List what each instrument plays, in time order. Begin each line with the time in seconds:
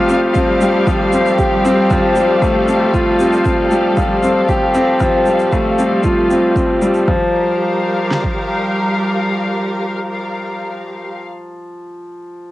Already playing: grand piano F3 G3 A3 C4 F4, string section G3 G4 F5
0.00 string section A4
0.09 grand piano C4, shaker
0.34 grand piano C4, kick, shaker
0.61 grand piano G3, shaker
0.87 grand piano F3, kick, shaker
1.13 grand piano C4, shaker
1.26 shaker
1.39 grand piano G4, kick, shaker
1.65 grand piano C4, shaker
1.90 grand piano F3, kick, shaker
2.15 grand piano G3, shaker
2.42 grand piano A3, kick, shaker
2.68 grand piano C4, shaker
2.94 grand piano F4, kick, shaker
3.19 grand piano C4, shaker
3.33 shaker
3.45 grand piano C4, kick, shaker
3.71 grand piano G3, shaker
3.97 grand piano F3, kick, shaker
4.23 grand piano C4, shaker
4.49 grand piano G4, kick, shaker
4.75 grand piano C4, shaker
5.00 grand piano F3, kick, shaker
5.26 grand piano G3, shaker
5.39 shaker
5.52 grand piano A3, kick, shaker
5.79 grand piano C4, shaker
6.04 grand piano F4, kick, shaker
6.30 grand piano C4, shaker
6.56 grand piano C4, kick, shaker
6.82 grand piano G3, shaker
6.94 shaker
7.07 grand piano F3, string section G3, kick
7.16 string section G4
7.23 string section A#4
7.31 string section F5
8.11 snare
8.24 kick